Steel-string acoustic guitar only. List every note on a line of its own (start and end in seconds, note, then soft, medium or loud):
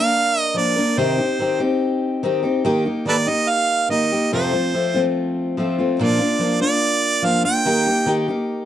0.00 0.55 A#3 soft
0.00 0.55 D4 medium
0.00 0.56 A#4 medium
0.54 0.76 F3 medium
0.54 0.77 A#3 medium
0.54 0.77 D4 medium
0.54 0.75 A#4 medium
0.76 0.97 A#3 soft
0.76 0.98 D4 soft
0.76 0.98 A#4 soft
0.97 1.19 C3 medium
0.97 1.19 D#3 medium
0.97 1.19 C4 medium
0.97 1.18 D#4 medium
0.97 1.17 G4 medium
1.18 1.39 C4 soft
1.18 1.40 D#4 soft
1.18 1.40 G4 soft
1.39 1.60 D#3 medium
1.39 1.61 C4 medium
1.39 1.59 D#4 medium
1.39 1.59 G4 medium
1.60 2.22 C4 soft
1.60 2.23 D#4 medium
1.60 2.23 G4 medium
2.23 2.44 D#3 medium
2.23 2.44 C4 medium
2.23 2.42 D#4 medium
2.23 2.41 G4 medium
2.42 2.64 C4 soft
2.42 2.64 D#4 soft
2.42 2.64 G4 soft
2.65 2.86 D#3 medium
2.65 2.86 A#3 loud
2.65 2.85 D#4 loud
2.65 2.84 G4 loud
2.85 3.06 A#3 soft
2.85 3.06 D#4 soft
2.85 3.07 G4 medium
3.05 3.27 D#3 medium
3.05 3.27 A#3 medium
3.05 3.26 D#4 medium
3.05 3.25 G4 medium
3.26 3.89 A#3 soft
3.26 3.90 D#4 medium
3.26 3.90 G4 medium
3.89 4.11 D#3 medium
3.89 4.11 A#3 medium
3.89 4.12 D#4 medium
3.89 4.11 G4 medium
4.12 4.33 A#3 soft
4.12 4.33 D#4 soft
4.12 4.32 G4 soft
4.32 4.53 F2 medium
4.32 4.53 C3 medium
4.32 4.53 F3 medium
4.32 4.53 A3 medium
4.32 4.53 C4 loud
4.32 4.51 F4 medium
4.53 4.72 F3 soft
4.53 4.74 A3 soft
4.53 4.74 C4 soft
4.53 4.74 F4 soft
4.74 4.95 F3 medium
4.74 4.95 A3 medium
4.74 4.94 C4 medium
4.74 4.93 F4 medium
4.94 5.56 F3 soft
4.94 5.57 A3 medium
4.94 5.58 C4 medium
4.94 5.57 F4 medium
5.57 5.78 F3 medium
5.57 5.79 A3 medium
5.57 5.79 C4 medium
5.57 5.77 F4 medium
5.79 5.98 F3 soft
5.79 6.00 A3 soft
5.79 6.00 C4 soft
5.79 5.99 F4 medium
5.99 6.20 A#2 medium
5.99 6.20 F3 medium
5.99 6.21 A#3 medium
5.99 6.19 D4 medium
5.99 6.18 F4 loud
6.19 6.39 A#3 soft
6.19 6.40 D4 soft
6.19 6.40 F4 soft
6.39 6.61 F3 soft
6.39 6.61 A#3 medium
6.39 6.60 D4 medium
6.39 6.59 F4 medium
6.60 7.22 A#3 soft
6.60 7.23 D4 medium
6.60 7.23 F4 soft
7.22 7.44 F3 medium
7.22 7.44 A#3 medium
7.22 7.43 D4 medium
7.22 7.43 F4 medium
7.44 7.65 A#3 soft
7.44 7.66 D4 soft
7.44 7.65 F4 soft
7.65 7.86 D#3 medium
7.65 7.87 A#3 medium
7.65 7.87 D#4 medium
7.65 7.85 G4 medium
7.86 8.06 A#3 soft
7.86 8.06 D#4 soft
7.86 8.07 G4 soft
8.06 8.28 D#3 medium
8.06 8.28 A#3 medium
8.06 8.28 D#4 medium
8.06 8.27 G4 medium
8.28 8.65 A#3 soft
8.28 8.65 D#4 soft
8.28 8.65 G4 medium